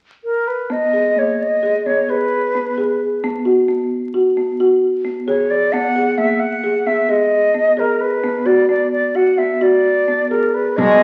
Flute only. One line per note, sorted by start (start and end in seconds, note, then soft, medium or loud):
0.24 0.49 A#4 medium
0.48 0.73 B4 medium
0.72 1.20 D#5 medium
1.19 1.44 C#5 medium
1.42 1.88 D#5 medium
1.86 2.11 C#5 medium
2.10 3.01 B4 medium
5.28 5.52 C#5 medium
5.50 5.74 D5 medium
5.72 6.19 F#5 medium
6.18 6.41 E5 medium
6.40 6.88 F#5 medium
6.87 7.11 E5 medium
7.10 7.81 D#5 medium
7.79 8.02 A#4 medium
8.01 8.48 B4 medium
8.46 8.69 D5 medium
8.70 8.91 D5 medium
8.92 9.17 D5 medium
9.16 9.40 F#5 medium
9.38 9.64 E5 medium
9.62 10.29 D5 medium
10.30 10.56 A#4 medium
10.54 10.78 B4 medium
10.77 11.03 D#5 loud